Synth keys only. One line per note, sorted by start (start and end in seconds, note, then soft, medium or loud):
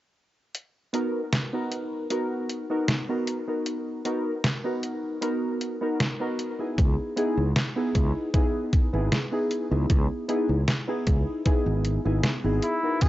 0.93 1.20 B3 medium
0.93 1.20 D#4 medium
0.93 1.21 F#4 medium
0.93 1.21 A#4 medium
1.53 2.06 B3 medium
1.53 2.06 D#4 medium
1.53 2.06 F#4 medium
1.53 2.07 A#4 medium
2.10 2.65 B3 medium
2.10 2.65 D#4 medium
2.10 2.65 F#4 medium
2.10 2.66 A#4 medium
2.70 2.95 B3 medium
2.70 2.95 D#4 medium
2.70 2.96 F#4 medium
2.70 2.96 A#4 medium
3.09 3.43 B3 medium
3.09 3.43 D#4 medium
3.09 3.43 F#4 medium
3.09 3.44 A#4 medium
3.47 4.01 B3 medium
3.47 4.01 D#4 medium
3.47 4.01 F#4 medium
3.47 4.01 A#4 medium
4.05 4.32 B3 medium
4.05 4.32 D#4 medium
4.05 4.32 F#4 medium
4.05 4.33 A#4 medium
4.64 5.17 B3 medium
4.64 5.18 D#4 medium
4.64 5.18 F#4 medium
4.64 5.18 A#4 medium
5.21 5.76 B3 medium
5.21 5.77 D#4 medium
5.21 5.77 F#4 medium
5.21 5.77 A#4 loud
5.81 6.07 B3 medium
5.81 6.07 D#4 medium
5.81 6.07 F#4 medium
5.81 6.07 A#4 medium
6.20 6.54 B3 medium
6.20 6.55 D#4 medium
6.20 6.55 F#4 medium
6.20 6.55 A#4 medium
6.59 7.12 B3 medium
6.59 7.12 D#4 medium
6.59 7.13 E4 medium
6.59 7.13 G#4 medium
7.16 7.43 B3 medium
7.16 7.44 D#4 medium
7.16 7.44 E4 medium
7.16 7.44 G#4 loud
7.76 8.29 B3 medium
7.76 8.30 D#4 medium
7.76 8.30 E4 medium
7.76 8.30 G#4 medium
8.34 8.88 B3 medium
8.34 8.89 D#4 medium
8.34 8.89 E4 medium
8.34 8.89 G#4 loud
8.93 9.18 B3 medium
8.93 9.19 D#4 medium
8.93 9.19 E4 medium
8.93 9.19 G#4 medium
9.32 9.66 B3 medium
9.32 9.66 D#4 medium
9.32 9.67 E4 medium
9.32 9.67 G#4 medium
9.71 10.24 B3 medium
9.71 10.24 D#4 medium
9.71 10.25 E4 medium
9.71 10.25 G#4 medium
10.28 10.55 B3 medium
10.28 10.56 D#4 medium
10.28 10.56 E4 medium
10.28 10.56 G#4 loud
10.87 11.41 B3 medium
10.87 11.41 D#4 medium
10.87 11.41 E4 medium
10.87 11.42 G#4 medium
11.45 12.00 B3 medium
11.45 12.00 D#4 medium
11.45 12.01 E4 medium
11.45 12.01 G#4 loud
12.05 12.30 B3 medium
12.05 12.31 D#4 medium
12.05 12.31 E4 medium
12.05 12.31 G#4 medium
12.44 12.78 B3 medium
12.44 12.78 D#4 medium
12.44 12.78 E4 medium
12.44 12.79 G#4 medium
12.83 13.09 B3 medium
12.83 13.09 D#4 medium
12.83 13.09 F#4 medium
12.83 13.09 A#4 medium